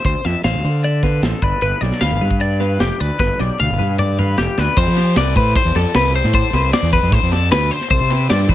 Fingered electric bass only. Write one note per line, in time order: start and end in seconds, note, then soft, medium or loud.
0.04 0.14 D2 loud
0.25 0.34 F2 medium
0.44 0.53 A1 medium
0.54 0.63 D2 medium
0.64 1.19 D3 medium
1.22 1.32 A1 medium
1.42 1.51 G1 medium
1.62 1.71 G1 loud
1.81 1.91 B1 medium
2.01 2.11 D2 loud
2.11 2.20 G1 medium
2.21 2.77 G2 medium
2.80 2.89 F1 medium
3.00 3.09 D2 medium
3.20 3.29 G1 loud
3.40 3.49 B1 medium
3.60 3.69 D2 loud
3.70 3.79 G1 medium
3.80 4.34 G2 medium
4.38 4.47 F1 medium
4.58 4.67 D2 medium
4.77 4.86 F2 loud
4.87 5.14 F3 medium
5.16 5.34 C2 medium
5.36 5.54 A2 loud
5.65 5.74 E2 loud
5.75 5.84 F2 loud
5.95 6.21 C2 medium
6.24 6.42 A2 medium
6.53 6.71 C2 medium
6.82 7.00 E2 medium
7.03 7.12 F2 medium
7.12 7.21 A2 loud
7.23 7.49 F2 medium
7.51 7.69 D2 medium
7.91 7.99 C2 loud
8.00 8.27 C3 medium
8.30 8.48 G2 loud
8.49 8.55 E2 loud